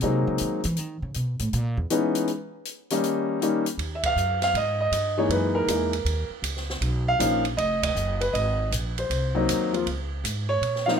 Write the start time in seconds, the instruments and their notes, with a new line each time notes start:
0.01 upright bass C3, grand piano F#3 G#3 A#3 C4 D#4, closed hi-hat
0.27 upright bass C#3
0.38 upright bass D#3, closed hi-hat
0.64 upright bass E3, closed hi-hat
0.77 upright bass D#3, closed hi-hat
1.02 upright bass C#3
1.14 upright bass B2, closed hi-hat
1.39 upright bass A2, closed hi-hat
1.53 upright bass A#2, closed hi-hat
1.77 upright bass E2
1.90 grand piano E3 G#3 B3 C#4 D#4, closed hi-hat
2.15 closed hi-hat
2.28 closed hi-hat
2.65 closed hi-hat
2.90 grand piano D#3 G3 A#3 C#4 D#4, closed hi-hat
3.04 closed hi-hat
3.41 grand piano D#3 G3 A#3 C#4 D#4, closed hi-hat
3.66 closed hi-hat
3.78 upright bass D#2, ride
3.95 grand piano E5
4.03 grand piano F5, kick, ride
4.16 upright bass F#2, hi-hat pedal
4.42 grand piano F5, snare, ride
4.54 upright bass G#2, grand piano D#5, ride
4.81 grand piano D#5
4.91 upright bass G2, hi-hat pedal, ride
5.17 grand piano E3 G#3 A#3 D#4 C#5
5.29 upright bass F#2, grand piano B4, ride
5.55 grand piano A#4
5.67 upright bass E2, grand piano E3 G#3 A#3 D#4, hi-hat pedal, ride
5.93 ride
6.05 upright bass D#2, ride
6.30 muted upright bass stroke
6.42 upright bass C#2, hi-hat pedal, ride
6.57 snare
6.70 snare
6.81 upright bass B1, ride
7.08 grand piano F5
7.19 upright bass A#1, grand piano F3 A#3 C#4 D#4, hi-hat pedal, ride
7.45 ride
7.57 upright bass F1, grand piano D#5, ride
7.83 grand piano D#5, kick, ride
7.95 upright bass F#1, hi-hat pedal
8.21 grand piano B4, ride
8.33 upright bass G#1, grand piano D#5, ride
8.71 upright bass A#1, hi-hat pedal, ride
8.98 grand piano C5, ride
9.10 upright bass C2, ride
9.35 grand piano F#3 A#3 C4 D#4
9.48 upright bass D#2, hi-hat pedal, ride
9.72 grand piano F3 A#3 C4 F4, ride
9.86 upright bass C#2, ride
10.24 upright bass G#2, hi-hat pedal, ride
10.49 grand piano C#5
10.61 upright bass A#2, ride
10.76 snare
10.86 grand piano F3 A#3 C4 D#4 F5, snare